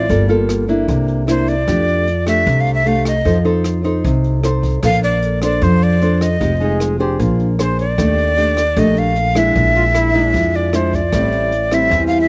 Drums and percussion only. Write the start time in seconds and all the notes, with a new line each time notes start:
0.09 kick, closed hi-hat
0.30 closed hi-hat
0.49 cross-stick, closed hi-hat
0.69 closed hi-hat
0.88 kick, closed hi-hat
1.08 closed hi-hat
1.28 cross-stick, closed hi-hat
1.48 closed hi-hat
1.68 kick, cross-stick, closed hi-hat
1.88 closed hi-hat
2.07 closed hi-hat
2.27 cross-stick, closed hi-hat
2.47 kick, closed hi-hat
2.66 closed hi-hat
2.86 closed hi-hat
3.05 cross-stick, closed hi-hat
3.25 kick, closed hi-hat
3.45 closed hi-hat
3.64 cross-stick, closed hi-hat
3.85 closed hi-hat
4.04 kick, closed hi-hat
4.24 closed hi-hat
4.44 cross-stick, closed hi-hat
4.63 kick, closed hi-hat
4.83 kick, cross-stick, closed hi-hat
5.03 closed hi-hat
5.22 closed hi-hat
5.42 cross-stick, closed hi-hat
5.61 kick, closed hi-hat
5.82 closed hi-hat
6.01 closed hi-hat
6.21 cross-stick, closed hi-hat
6.41 kick, closed hi-hat
6.61 closed hi-hat
6.80 cross-stick, closed hi-hat
7.00 closed hi-hat
7.20 kick, closed hi-hat
7.39 closed hi-hat
7.59 cross-stick, closed hi-hat
7.79 closed hi-hat
7.98 kick, cross-stick, closed hi-hat
8.18 closed hi-hat
8.38 closed hi-hat
8.57 cross-stick, closed hi-hat
8.76 kick, closed hi-hat
8.96 closed hi-hat
9.16 closed hi-hat
9.35 cross-stick, closed hi-hat
9.55 kick, closed hi-hat
9.75 closed hi-hat
9.95 cross-stick, closed hi-hat
10.15 closed hi-hat
10.34 kick, closed hi-hat
10.53 closed hi-hat
10.73 cross-stick, closed hi-hat
10.93 kick, closed hi-hat
11.13 kick, cross-stick, closed hi-hat
11.32 closed hi-hat
11.52 closed hi-hat
11.71 cross-stick, closed hi-hat
11.91 kick, closed hi-hat
12.11 closed hi-hat